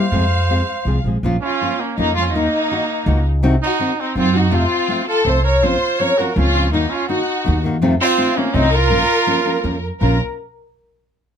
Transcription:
Already playing: C5 F5
0.12 F2 C3 F3 G#3 C4 G#4
0.49 F3 G#3 C4 G#4
0.85 C2 F3 G#3 C4 G#4
1.04 A#1 F3 G#3 C4 G#4
1.23 A#1 A#2 F3 A#3 C#4 F4
1.42 C#4 F4
1.61 F3 A#3 C#4 F4
1.80 A#3 C#4
1.97 F2 F3 A#3 C#4 D#4 F4
2.15 F3 A#3 C#4 F4
2.26 C#4 F4
2.32 D#2 D#3 A#3 D#4
2.36 D#4 F#4
2.71 D#3 A#3 D#4 F#4
3.06 C#2 D#3 A#3 D#4 F#4
3.42 C2 C3 D#3 C4 D#4 F#4
3.62 D#4 F#4
3.79 D#3 C4 D#4 F#4
4.00 C4 D#4
4.16 F#2 D#3 C4 D#4 F4 F#4
4.35 D#3 C4 D#4 F#4
4.51 F2 C3 F3 A3 C4 F4
4.88 F3 A3 C4 F4
5.08 F4 A4
5.25 C2 F3 A3 C4 F4 A4 C5
5.44 A#4 C#5
5.62 A#1 A#2 F3 C4 C#4 F4 C5
5.99 F3 C4 C#4 F4 A#4 C#5
6.18 F3 C4 C#4 F4 F#4 A#4
6.36 C#2 F3 C4 C#4 F4
6.55 F3 C4 C#4 F4
6.72 D#2 D#3 A#3 D#4 F#4
6.89 C#4 F4
7.09 D#3 A#3 D#4 F#4
7.44 D#2 D#3 A#3 D#4 F#4
7.64 D#3 A#3 D#4 F#4
7.82 F2 C3 D#3 A3 C4 F4
8.01 C4 F4
8.17 D#3 A3 C4 F4
8.36 D#3 A3 A#3 C4 C#4 F4
8.54 C2 D#3 A3 C4 D#4 F4
8.72 F4 A#4
8.90 A#1 A#2 F3 A#3 C#4 F4
9.27 F3 A#3 C#4 F4
9.45 F3 A#3 C#4 F4
9.64 F2 F3 A#3 C#4 F4
9.99 A#1 A#2 F3 A#3 C#4 F4 A#4

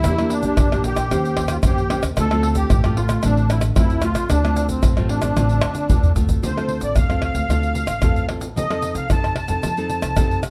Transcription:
Already playing: E4
0.04 E2 E3 A#3 D4 G4, pandeiro, tamborim, shaker, surdo
0.18 A#3 D4 G4, pandeiro, tamborim, shaker
0.30 D4, pandeiro, shaker
0.43 A#3 D4 G4, pandeiro, shaker, surdo
0.57 A#2 E3, pandeiro, tamborim, shaker, surdo
0.72 A#2 A#3 D4 G4, pandeiro, tamborim, shaker
0.84 G4, pandeiro, shaker, surdo
0.96 pandeiro, tamborim, shaker, surdo
1.11 D#2 D#3 C#4 G4 C5, pandeiro, tamborim, shaker, surdo
1.25 pandeiro, shaker
1.37 pandeiro, tamborim, surdo
1.48 F4, pandeiro, tamborim, shaker
1.63 D#2 A#2 C#4 G4 C5, pandeiro, tamborim, shaker, surdo
1.78 pandeiro, shaker
1.90 C#4 G4 C5, pandeiro, tamborim
2.03 D#2, pandeiro, tamborim, shaker, surdo
2.17 D2 D3 A3 C4 F4 A4, pandeiro, tamborim, shaker, surdo
2.31 A3 C4 F4, pandeiro, tamborim, shaker
2.43 pandeiro
2.55 G4, pandeiro, shaker, surdo
2.70 A1 A2, pandeiro, tamborim, shaker, surdo
2.84 A1 A3 C4 F4, pandeiro, tamborim, shaker
2.97 F4, pandeiro, surdo
3.09 pandeiro, tamborim, shaker, surdo
3.23 A1 D3 A3 C4 D4 F4, pandeiro, tamborim, shaker, surdo
3.37 pandeiro, shaker
3.49 E4, pandeiro, tamborim, shaker, surdo
3.61 pandeiro, tamborim, shaker
3.76 D2 A2 A3 C4 E4 F4, pandeiro, tamborim, shaker, surdo
3.90 pandeiro, shaker
4.02 A3 C4 F4, pandeiro, tamborim, shaker
4.15 A1, pandeiro, tamborim, shaker, surdo
4.29 D2 D3 D4, pandeiro, tamborim, shaker, surdo
4.44 A3 C4 F4, pandeiro, tamborim, shaker
4.56 pandeiro, shaker
4.69 C4, pandeiro, shaker, surdo
4.83 A1 A2, pandeiro, tamborim, shaker, surdo
4.97 A1 A3 C4 F4, pandeiro, tamborim, shaker
5.09 D4, pandeiro, surdo
5.22 A3 C4 F4, pandeiro, tamborim, shaker, surdo
5.36 A1 D3 A3 C4 F4, pandeiro, tamborim, shaker, surdo
5.49 pandeiro, shaker
5.62 F2, pandeiro, tamborim, shaker, surdo
5.75 pandeiro, shaker
5.90 E2 A2 A3 C4 F4, surdo, pandeiro, shaker
6.03 surdo, pandeiro, shaker
6.15 D2 A3 C4 F4, pandeiro, shaker, surdo
6.29 pandeiro, shaker, surdo
6.42 D2 D3 C4 F4 A4 C5, pandeiro, shaker, surdo
6.56 C4 F4 A4, pandeiro, tamborim, shaker
6.69 pandeiro
6.81 A1 D5, pandeiro, shaker
6.96 D2 A2 F5, pandeiro, tamborim, shaker, surdo
7.10 C4 F4 A4, pandeiro, tamborim, shaker
7.22 F5, pandeiro, tamborim
7.34 D2, pandeiro, shaker
7.49 D2 D3 C4 F4 A4, pandeiro, tamborim, shaker, surdo
7.63 pandeiro, shaker
7.75 pandeiro, shaker
7.87 A1, pandeiro, tamborim, shaker
8.02 E2 A2 C4 F4 A4, pandeiro, tamborim, shaker, surdo
8.16 pandeiro, shaker
8.29 C4 F4 A4, pandeiro, tamborim
8.41 pandeiro, shaker
8.56 F2 F3 C4 D#4 A4 D#5, pandeiro, shaker, surdo
8.70 C4 D#4 A4, pandeiro, tamborim, shaker
8.82 pandeiro, shaker
8.95 C2 F5, pandeiro, shaker
9.10 F2 C3 C4 D#4 A4 A5, pandeiro, tamborim, shaker, surdo
9.24 pandeiro, tamborim, shaker
9.36 A5, pandeiro, tamborim
9.48 F2 C4 D#4 A4, pandeiro, shaker
9.63 F2 F3, pandeiro, tamborim, shaker, surdo
9.77 C4 D#4 A4, pandeiro, shaker
9.90 pandeiro, shaker
10.02 C2, pandeiro, tamborim, shaker
10.16 F2 C3 C4 D#4 A4, pandeiro, tamborim, shaker, surdo
10.31 pandeiro, shaker
10.43 pandeiro, tamborim, shaker

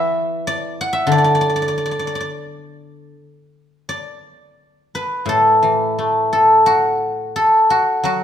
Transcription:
Already playing: E3 D5 E5 F#5
0.47 D5
0.81 F#5
0.93 E5
1.07 D3
1.12 D5
1.18 D5
1.24 D5
1.35 D5
1.41 D5
1.50 D5
1.56 D5
1.62 D5
1.68 D5
1.78 D5
1.86 D5
1.91 D5
1.99 D5
2.07 D5
2.15 D5
2.20 D5
3.89 D5
4.95 B4
5.26 A2 A4
5.63 E3
5.99 A3
6.33 A4
6.66 F#4
7.36 A4
7.70 F#4
8.04 F#3 F#4

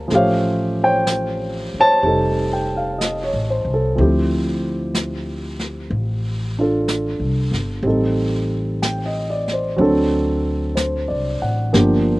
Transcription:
Already playing: A#3 C4 G4 C5 F5 A5
0.08 A1 F3 A3, brush sweep, snare
0.12 C#4 G4 C#5 F5
0.16 C5
0.84 C5 C#5 G5
1.07 brush sweep, snare, hi-hat pedal
1.74 muted upright bass stroke
1.80 C5 C#5 A5
2.03 F1 G3 D#4 A4, brush sweep
2.53 G5
2.77 F5
2.98 D#5, brush sweep, snare, hi-hat pedal
3.24 C#5
3.33 A1
3.50 C5
3.65 C2
3.74 A4
3.96 D2 F3 C4 E4, brush sweep
4.01 G4
4.95 brush sweep, snare, hi-hat pedal
5.59 snare
5.90 A1, brush sweep
6.59 D4 F4 A4
6.88 brush sweep, snare, hi-hat pedal
7.20 C2
7.52 G1, snare
7.82 A1 G3 C4 D#4, brush sweep
7.87 A4
8.82 G5, brush sweep, snare, hi-hat pedal
9.06 D#5
9.30 D5
9.48 snare
9.53 C5
9.76 D2 F#3 C4 D4, brush sweep
9.81 A4
10.75 C5, brush sweep, snare, hi-hat pedal
11.08 C2 D5
11.42 A1 F#5
11.73 G1 F3 A#3 D4 G4, brush sweep, snare

